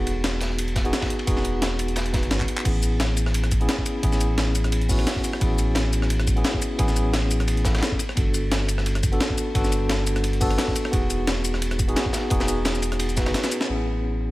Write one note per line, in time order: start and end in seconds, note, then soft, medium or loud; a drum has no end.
0.00 0.92 E1 loud
0.00 0.82 B3 medium
0.00 0.83 D#4 medium
0.00 0.83 F#4 medium
0.00 0.84 G#4 medium
0.07 closed hi-hat medium
0.07 ride medium
0.24 snare loud
0.24 closed hi-hat medium
0.24 ride medium
0.40 snare medium
0.40 closed hi-hat medium
0.40 ride medium
0.50 snare soft
0.59 closed hi-hat medium
0.59 ride medium
0.68 closed hi-hat soft
0.76 kick loud
0.76 snare medium
0.76 closed hi-hat medium
0.76 ride medium
0.84 0.90 B3 medium
0.84 0.90 D#4 medium
0.84 0.91 F#4 medium
0.84 0.91 G#4 medium
0.84 closed hi-hat soft
0.93 snare loud
0.93 closed hi-hat medium
0.93 ride medium
1.01 kick medium
1.01 snare medium
1.01 ride medium
1.10 closed hi-hat medium
1.19 ride medium
1.27 2.25 E1 loud
1.27 1.33 B3 medium
1.27 1.34 D#4 medium
1.27 1.34 F#4 medium
1.27 1.34 G#4 medium
1.27 kick loud
1.27 closed hi-hat medium
1.27 ride medium
1.37 snare soft
1.37 ride soft
1.45 closed hi-hat medium
1.45 ride medium
1.62 snare loud
1.62 closed hi-hat medium
1.62 ride medium
1.79 closed hi-hat medium
1.79 ride medium
1.88 closed hi-hat soft
1.96 snare loud
1.96 closed hi-hat loud
1.96 ride medium
2.06 closed hi-hat soft
2.13 2.63 B3 medium
2.13 2.63 D#4 medium
2.13 2.64 F#4 medium
2.13 2.64 B4 medium
2.13 kick loud
2.13 snare medium
2.13 closed hi-hat medium
2.13 ride medium
2.23 2.47 G#1 medium
2.23 closed hi-hat soft
2.23 ride soft
2.31 snare loud
2.31 closed hi-hat medium
2.31 ride medium
2.40 kick medium
2.40 clap medium
2.48 closed hi-hat medium
2.48 ride medium
2.57 clap medium
2.64 3.68 A1 loud
2.64 3.58 B3 medium
2.64 3.59 C#4 medium
2.64 3.59 E4 medium
2.64 3.60 G#4 medium
2.64 kick loud
2.64 closed hi-hat loud
2.64 ride medium
2.64 crash medium
2.83 closed hi-hat medium
2.83 ride medium
2.83 shaker medium
3.00 snare loud
3.00 closed hi-hat medium
3.00 ride medium
3.17 closed hi-hat medium
3.17 ride medium
3.17 shaker medium
3.26 cross-stick soft
3.26 snare soft
3.34 closed hi-hat medium
3.34 ride medium
3.44 cross-stick soft
3.44 closed hi-hat soft
3.52 kick loud
3.52 closed hi-hat medium
3.52 ride medium
3.52 shaker medium
3.60 3.66 B3 medium
3.60 3.66 C#4 medium
3.60 3.67 E4 medium
3.60 3.67 G#4 medium
3.60 closed hi-hat soft
3.69 snare loud
3.69 closed hi-hat medium
3.69 ride medium
3.78 kick medium
3.86 closed hi-hat medium
3.86 ride medium
3.86 shaker medium
4.03 5.06 A1 medium
4.03 4.09 B3 medium
4.03 4.10 C#4 medium
4.03 4.10 E4 medium
4.03 4.10 G#4 medium
4.03 kick loud
4.03 closed hi-hat medium
4.03 ride medium
4.12 snare soft
4.12 ride soft
4.12 shaker soft
4.21 closed hi-hat medium
4.21 ride medium
4.21 shaker medium
4.38 snare loud
4.38 closed hi-hat medium
4.38 ride medium
4.55 closed hi-hat medium
4.55 ride medium
4.55 shaker medium
4.64 cross-stick soft
4.64 closed hi-hat soft
4.72 closed hi-hat medium
4.72 ride medium
4.81 closed hi-hat soft
4.89 4.99 B3 medium
4.89 4.99 C#4 medium
4.89 5.00 E4 medium
4.89 5.00 F#4 loud
4.89 kick loud
4.89 closed hi-hat medium
4.89 open hi-hat medium
4.89 shaker medium
4.99 cross-stick soft
4.99 closed hi-hat soft
4.99 ride soft
5.07 snare loud
5.07 closed hi-hat medium
5.07 ride medium
5.16 kick medium
5.24 closed hi-hat medium
5.24 ride medium
5.24 shaker medium
5.33 cross-stick soft
5.40 6.44 A1 medium
5.40 6.34 B3 medium
5.40 6.34 C#4 medium
5.40 6.35 E4 medium
5.40 6.35 G#4 medium
5.40 kick loud
5.40 closed hi-hat medium
5.40 ride medium
5.58 closed hi-hat medium
5.58 ride medium
5.58 shaker medium
5.75 snare loud
5.75 closed hi-hat medium
5.75 ride medium
5.93 closed hi-hat medium
5.93 ride medium
5.93 shaker medium
6.02 cross-stick soft
6.02 snare soft
6.10 closed hi-hat medium
6.10 ride medium
6.20 cross-stick soft
6.20 closed hi-hat soft
6.27 kick loud
6.27 closed hi-hat medium
6.27 ride medium
6.27 shaker medium
6.36 6.42 B3 medium
6.36 6.42 C#4 medium
6.36 6.42 E4 medium
6.36 6.43 G#4 medium
6.36 closed hi-hat soft
6.44 snare loud
6.44 closed hi-hat medium
6.44 ride medium
6.54 kick medium
6.62 closed hi-hat medium
6.62 ride medium
6.62 shaker medium
6.79 7.81 A1 medium
6.79 6.85 B3 medium
6.79 6.85 C#4 medium
6.79 6.86 E4 medium
6.79 6.86 G#4 medium
6.79 kick loud
6.79 closed hi-hat medium
6.79 ride medium
6.88 snare soft
6.88 ride soft
6.88 shaker soft
6.96 closed hi-hat medium
6.96 ride medium
6.96 shaker medium
7.13 snare loud
7.13 closed hi-hat medium
7.13 ride medium
7.31 closed hi-hat medium
7.31 ride medium
7.31 shaker medium
7.40 cross-stick soft
7.40 closed hi-hat soft
7.48 closed hi-hat medium
7.48 ride medium
7.57 closed hi-hat soft
7.65 7.99 B3 medium
7.65 7.99 C#4 medium
7.65 7.99 E4 medium
7.65 7.99 A4 medium
7.65 kick loud
7.65 snare loud
7.65 closed hi-hat medium
7.65 ride medium
7.65 shaker medium
7.75 cross-stick soft
7.75 snare medium
7.75 closed hi-hat soft
7.75 ride medium
7.78 snare medium
7.78 ride medium
7.81 snare loud
7.81 closed hi-hat medium
7.81 ride medium
7.92 kick medium
7.99 closed hi-hat medium
7.99 ride medium
7.99 shaker medium
8.09 cross-stick soft
8.16 9.19 G1 loud
8.16 9.10 B3 medium
8.16 9.10 D4 medium
8.16 9.11 F#4 medium
8.16 9.11 A4 medium
8.16 kick loud
8.16 closed hi-hat medium
8.16 ride medium
8.34 closed hi-hat medium
8.34 ride medium
8.34 shaker medium
8.51 snare loud
8.51 closed hi-hat medium
8.51 ride medium
8.68 closed hi-hat medium
8.68 ride medium
8.68 shaker medium
8.78 cross-stick soft
8.78 snare soft
8.86 closed hi-hat medium
8.86 ride medium
8.95 cross-stick soft
8.95 closed hi-hat soft
9.03 kick loud
9.03 closed hi-hat medium
9.03 ride medium
9.03 shaker medium
9.12 9.18 B3 medium
9.12 9.18 D4 medium
9.12 9.18 F#4 medium
9.12 9.18 A4 medium
9.12 closed hi-hat soft
9.20 snare loud
9.20 closed hi-hat medium
9.20 ride medium
9.30 kick medium
9.38 closed hi-hat medium
9.38 ride medium
9.38 shaker medium
9.54 10.57 G1 medium
9.54 9.61 B3 medium
9.54 9.61 D4 medium
9.54 9.62 F#4 medium
9.54 9.62 A4 medium
9.54 kick loud
9.54 closed hi-hat medium
9.54 ride medium
9.64 snare soft
9.64 ride soft
9.64 shaker soft
9.72 closed hi-hat medium
9.72 ride medium
9.72 shaker medium
9.89 snare loud
9.89 closed hi-hat medium
9.89 ride medium
10.07 closed hi-hat medium
10.07 ride medium
10.07 shaker medium
10.16 cross-stick soft
10.16 closed hi-hat soft
10.24 closed hi-hat medium
10.24 ride medium
10.33 closed hi-hat soft
10.41 10.51 B3 medium
10.41 10.51 D4 medium
10.41 10.51 F#4 medium
10.41 10.52 A4 loud
10.41 kick loud
10.41 closed hi-hat medium
10.41 open hi-hat medium
10.41 shaker medium
10.51 cross-stick soft
10.51 closed hi-hat soft
10.51 ride soft
10.58 snare loud
10.58 closed hi-hat medium
10.58 ride medium
10.68 kick medium
10.76 closed hi-hat medium
10.76 ride medium
10.76 shaker medium
10.85 cross-stick soft
10.92 11.95 E1 loud
10.92 11.86 B3 medium
10.92 11.86 D#4 medium
10.92 11.87 F#4 medium
10.92 11.87 G#4 medium
10.92 kick loud
10.92 closed hi-hat loud
10.92 ride medium
11.10 closed hi-hat medium
11.10 ride medium
11.10 shaker medium
11.27 snare loud
11.27 closed hi-hat medium
11.27 ride medium
11.45 closed hi-hat medium
11.45 ride medium
11.45 shaker medium
11.53 cross-stick soft
11.53 snare soft
11.62 closed hi-hat medium
11.62 ride medium
11.71 cross-stick soft
11.71 closed hi-hat soft
11.79 kick loud
11.79 closed hi-hat medium
11.79 ride medium
11.79 shaker medium
11.88 11.94 B3 medium
11.88 11.94 D#4 medium
11.88 11.94 F#4 medium
11.88 11.94 G#4 medium
11.88 closed hi-hat soft
11.96 snare loud
11.96 closed hi-hat medium
11.96 ride medium
12.06 kick medium
12.13 snare loud
12.13 closed hi-hat medium
12.13 ride medium
12.13 shaker medium
12.30 13.28 E1 medium
12.30 12.37 B3 medium
12.30 12.37 D#4 medium
12.30 12.37 F#4 medium
12.30 12.38 G#4 loud
12.30 kick loud
12.30 closed hi-hat loud
12.30 ride medium
12.40 snare soft
12.40 snare loud
12.40 ride medium
12.40 shaker soft
12.48 closed hi-hat medium
12.48 ride medium
12.48 shaker medium
12.65 snare loud
12.65 closed hi-hat loud
12.65 ride medium
12.75 shaker soft
12.82 closed hi-hat medium
12.82 ride medium
12.82 shaker medium
12.92 cross-stick soft
12.92 closed hi-hat soft
12.99 closed hi-hat loud
12.99 ride medium
13.09 closed hi-hat soft
13.09 shaker soft
13.16 13.66 B3 medium
13.16 13.67 D#4 medium
13.16 13.67 F#4 medium
13.16 13.68 B4 medium
13.16 kick loud
13.16 snare loud
13.16 closed hi-hat medium
13.16 ride medium
13.16 shaker medium
13.26 13.34 G#1 medium
13.26 cross-stick soft
13.26 snare medium
13.26 closed hi-hat soft
13.26 ride medium
13.34 snare loud
13.34 snare medium
13.34 closed hi-hat medium
13.34 ride medium
13.44 snare loud
13.44 snare medium
13.44 ride medium
13.44 shaker soft
13.52 closed hi-hat medium
13.52 ride medium
13.52 shaker medium
13.61 snare medium
13.67 14.31 A1 medium
13.67 14.31 B3 medium
13.67 14.31 C#4 medium
13.67 14.31 E4 medium
13.67 14.31 G#4 medium
13.86 shaker medium
14.21 shaker medium